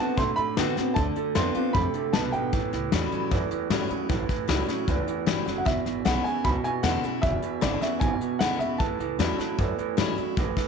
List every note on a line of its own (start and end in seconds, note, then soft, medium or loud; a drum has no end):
0.00 0.16 D3 medium
0.00 0.16 B3 medium
0.00 0.18 C4 soft
0.00 0.17 F#4 medium
0.00 0.18 A5 loud
0.17 0.93 A2 medium
0.17 0.33 B2 medium
0.17 0.36 D3 medium
0.17 0.36 A3 loud
0.17 0.38 C6 loud
0.17 kick loud
0.17 closed hi-hat medium
0.36 0.56 D3 medium
0.36 0.56 A3 medium
0.36 0.97 B5 loud
0.36 muted upright bass stroke medium
0.36 closed hi-hat medium
0.57 0.76 D3 medium
0.57 0.75 D3 medium
0.57 0.73 D3 medium
0.57 0.76 A3 medium
0.57 0.75 B3 medium
0.57 0.77 C4 loud
0.57 0.76 F#4 loud
0.57 snare loud
0.57 closed hi-hat medium
0.77 0.95 D3 medium
0.77 0.95 B3 medium
0.77 0.97 C4 medium
0.77 0.96 F#4 medium
0.77 muted upright bass stroke medium
0.77 snare soft
0.77 closed hi-hat medium
0.94 1.11 D2 medium
0.94 1.34 D3 medium
0.94 1.14 D3 medium
0.94 1.15 A3 medium
0.94 1.31 A5 loud
0.94 kick loud
0.94 closed hi-hat loud
1.16 1.34 D3 medium
1.16 1.34 A3 medium
1.16 muted upright bass stroke medium
1.16 closed hi-hat medium
1.35 1.51 F2 loud
1.35 1.54 D3 medium
1.35 1.53 D3 medium
1.35 1.54 A3 medium
1.35 1.54 B3 medium
1.35 1.55 C4 medium
1.35 1.54 F4 medium
1.35 1.76 C6 medium
1.35 snare loud
1.35 closed hi-hat medium
1.55 1.73 D3 medium
1.55 1.73 B3 medium
1.55 1.75 C4 medium
1.55 1.74 F4 medium
1.55 muted upright bass stroke medium
1.55 closed hi-hat medium
1.73 1.90 F2 medium
1.73 2.12 C3 medium
1.73 1.92 D3 medium
1.73 1.93 A3 loud
1.73 2.14 B5 loud
1.73 kick loud
1.73 closed hi-hat medium
1.94 2.12 D3 medium
1.94 2.12 A3 medium
1.94 muted upright bass stroke medium
1.94 closed hi-hat medium
2.13 2.29 C2 medium
2.13 2.51 B2 medium
2.13 2.32 D3 medium
2.13 2.32 B3 loud
2.13 2.33 A5 medium
2.13 snare loud
2.13 closed hi-hat medium
2.32 2.49 G#1 loud
2.32 2.51 D3 medium
2.32 2.51 B3 medium
2.32 3.07 G5 medium
2.32 closed hi-hat medium
2.53 2.68 A1 medium
2.53 2.71 A2 medium
2.53 3.28 A2 medium
2.53 2.71 E3 medium
2.53 kick loud
2.53 closed hi-hat medium
2.73 2.88 C#2 medium
2.73 2.90 A2 medium
2.73 2.91 E3 medium
2.73 snare soft
2.73 closed hi-hat medium
2.92 3.08 E2 medium
2.92 3.10 A2 medium
2.92 3.29 E3 medium
2.92 3.10 F#3 medium
2.92 3.29 G3 loud
2.92 3.30 C#4 medium
2.92 3.30 E4 loud
2.92 snare loud
2.92 closed hi-hat medium
3.12 3.29 A2 medium
3.12 3.30 F#3 medium
3.12 muted upright bass stroke medium
3.12 closed hi-hat medium
3.31 4.06 E2 medium
3.31 3.46 F#2 medium
3.31 3.49 A2 medium
3.31 3.49 E3 loud
3.31 kick loud
3.31 closed hi-hat medium
3.51 3.69 A2 medium
3.51 3.69 E3 medium
3.51 muted upright bass stroke medium
3.51 closed hi-hat medium
3.70 3.85 A2 medium
3.70 3.88 A2 medium
3.70 3.89 E3 medium
3.70 3.88 F#3 loud
3.70 3.90 G3 medium
3.70 3.90 C#4 loud
3.70 3.88 E4 loud
3.70 snare loud
3.70 closed hi-hat medium
3.89 4.08 A2 medium
3.89 4.08 F#3 medium
3.89 4.10 C#4 medium
3.89 4.08 E4 medium
3.89 muted upright bass stroke medium
3.89 closed hi-hat medium
4.09 4.25 A1 medium
4.09 4.27 A2 loud
4.09 4.84 A2 medium
4.09 4.27 E3 medium
4.09 kick loud
4.09 closed hi-hat medium
4.29 4.47 A2 medium
4.29 4.47 E3 medium
4.29 kick medium
4.29 snare soft
4.29 closed hi-hat medium
4.48 4.63 C#2 loud
4.48 4.66 A2 medium
4.48 4.67 E3 medium
4.48 4.66 F#3 medium
4.48 4.67 G3 medium
4.48 4.68 C#4 medium
4.48 4.67 E4 medium
4.48 snare loud
4.48 closed hi-hat medium
4.68 4.86 A2 medium
4.68 4.86 F#3 loud
4.68 4.88 C#4 medium
4.68 4.87 E4 medium
4.68 muted upright bass stroke medium
4.68 snare soft
4.68 closed hi-hat medium
4.88 5.03 C#2 medium
4.88 5.63 E2 medium
4.88 5.06 A2 medium
4.88 5.06 E3 medium
4.88 kick loud
4.88 closed hi-hat medium
5.07 5.25 A2 medium
5.07 5.25 E3 medium
5.07 muted upright bass stroke medium
5.07 closed hi-hat medium
5.26 5.42 G1 medium
5.26 5.45 A2 medium
5.26 5.46 E3 loud
5.26 5.45 F#3 medium
5.26 5.46 G3 medium
5.26 5.46 C#4 medium
5.26 5.44 E4 loud
5.26 snare loud
5.26 closed hi-hat medium
5.45 5.62 F#1 medium
5.45 5.65 A2 medium
5.45 5.65 F#3 medium
5.45 5.66 C#4 soft
5.45 5.65 E4 medium
5.45 snare soft
5.45 closed hi-hat medium
5.58 5.66 F#5 medium
5.65 5.81 E1 medium
5.65 6.40 E2 medium
5.65 5.84 E2 medium
5.65 5.84 B2 loud
5.65 6.06 E5 loud
5.65 kick loud
5.65 snare soft
5.65 closed hi-hat medium
5.85 6.00 G#1 medium
5.85 6.03 E2 medium
5.85 6.04 B2 medium
5.85 snare soft
5.85 closed hi-hat medium
6.05 6.20 B1 loud
6.05 6.23 E2 medium
6.05 6.23 C#3 medium
6.05 6.24 D3 medium
6.05 6.24 G#3 medium
6.05 6.25 B3 loud
6.05 6.23 E4 loud
6.05 6.26 F#5 loud
6.05 snare loud
6.05 closed hi-hat medium
6.24 6.43 E2 medium
6.24 6.43 C#3 medium
6.24 6.45 B3 soft
6.24 6.43 E4 medium
6.24 6.43 G#5 loud
6.24 muted upright bass stroke medium
6.24 closed hi-hat medium
6.44 6.60 C#2 medium
6.44 6.62 E2 medium
6.44 7.19 B2 medium
6.44 6.63 B2 loud
6.44 6.49 B5 loud
6.44 kick loud
6.44 closed hi-hat medium
6.64 6.82 E2 medium
6.64 6.82 B2 medium
6.64 6.69 G#5 loud
6.64 muted upright bass stroke medium
6.64 closed hi-hat medium
6.83 6.98 E2 medium
6.83 7.01 E2 medium
6.83 7.02 C#3 loud
6.83 7.02 D3 medium
6.83 7.03 G#3 medium
6.83 7.03 B3 medium
6.83 7.02 E4 medium
6.83 7.24 F#5 loud
6.83 snare loud
6.83 closed hi-hat medium
7.02 7.21 E2 medium
7.02 7.21 C#3 medium
7.02 7.23 B3 soft
7.02 7.22 E4 medium
7.02 muted upright bass stroke medium
7.02 closed hi-hat medium
7.22 7.38 E1 medium
7.22 7.41 E2 medium
7.22 7.98 E2 medium
7.22 7.41 B2 medium
7.22 7.63 E5 loud
7.22 kick loud
7.22 closed hi-hat loud
7.42 7.60 E2 medium
7.42 7.61 B2 medium
7.42 muted upright bass stroke medium
7.42 closed hi-hat medium
7.61 7.77 G#1 loud
7.61 7.80 E2 medium
7.61 7.80 C#3 medium
7.61 7.81 D3 medium
7.61 7.81 G#3 medium
7.61 7.82 B3 medium
7.61 7.80 E4 medium
7.61 7.80 D5 medium
7.61 snare loud
7.61 closed hi-hat loud
7.81 8.00 E2 medium
7.81 8.00 C#3 medium
7.81 8.02 B3 medium
7.81 8.01 E4 medium
7.81 8.00 E5 medium
7.81 muted upright bass stroke medium
7.81 snare soft
7.81 closed hi-hat medium
8.00 8.16 G#1 loud
8.00 8.19 E2 medium
8.00 8.76 B2 medium
8.00 8.20 B2 loud
8.00 8.37 G#5 loud
8.00 kick loud
8.00 closed hi-hat medium
8.21 8.39 E2 medium
8.21 8.39 B2 medium
8.21 muted upright bass stroke medium
8.21 closed hi-hat medium
8.39 8.55 D2 medium
8.39 8.59 E2 loud
8.39 8.59 C#3 loud
8.39 8.60 D3 loud
8.39 8.60 G#3 loud
8.39 8.60 B3 loud
8.39 8.59 E4 loud
8.39 8.58 F#5 loud
8.39 snare loud
8.39 closed hi-hat medium
8.59 8.75 E1 medium
8.59 8.78 E2 medium
8.59 8.78 C#3 medium
8.59 8.80 B3 soft
8.59 8.79 E4 medium
8.59 8.78 E5 medium
8.59 closed hi-hat medium
8.78 8.95 A1 loud
8.78 8.98 A2 medium
8.78 9.55 A2 medium
8.78 8.98 E3 loud
8.78 10.68 A5 medium
8.78 kick loud
8.78 closed hi-hat loud
8.99 9.14 C#2 medium
8.99 9.17 A2 medium
8.99 9.18 E3 medium
8.99 closed hi-hat medium
9.19 9.34 E2 loud
9.19 9.37 A2 medium
9.19 9.38 E3 medium
9.19 9.37 F#3 medium
9.19 9.38 G3 medium
9.19 9.39 C#4 medium
9.19 9.37 E4 loud
9.19 snare loud
9.19 closed hi-hat medium
9.38 9.56 A2 medium
9.38 9.57 F#3 medium
9.38 9.59 C#4 medium
9.38 9.57 E4 medium
9.38 muted upright bass stroke medium
9.38 snare soft
9.38 closed hi-hat medium
9.58 10.33 E2 medium
9.58 9.74 F#2 medium
9.58 9.76 A2 medium
9.58 9.77 E3 medium
9.58 kick loud
9.58 closed hi-hat medium
9.78 9.96 A2 medium
9.78 9.96 E3 medium
9.78 muted upright bass stroke medium
9.78 closed hi-hat medium
9.97 10.15 A2 medium
9.97 10.13 A2 medium
9.97 10.16 E3 medium
9.97 10.16 F#3 loud
9.97 10.17 G3 loud
9.97 10.17 C#4 medium
9.97 10.15 E4 loud
9.97 snare loud
9.97 closed hi-hat medium
10.16 10.35 A2 medium
10.16 10.36 F#3 medium
10.16 10.37 C#4 soft
10.16 10.36 E4 medium
10.16 muted upright bass stroke medium
10.16 closed hi-hat medium
10.37 10.52 A1 medium
10.37 10.68 A2 medium
10.37 10.55 A2 medium
10.37 10.55 E3 loud
10.37 kick loud
10.37 closed hi-hat medium
10.57 10.68 A2 medium
10.57 10.68 E3 medium
10.57 muted upright bass stroke medium
10.57 kick medium
10.57 snare soft
10.57 closed hi-hat medium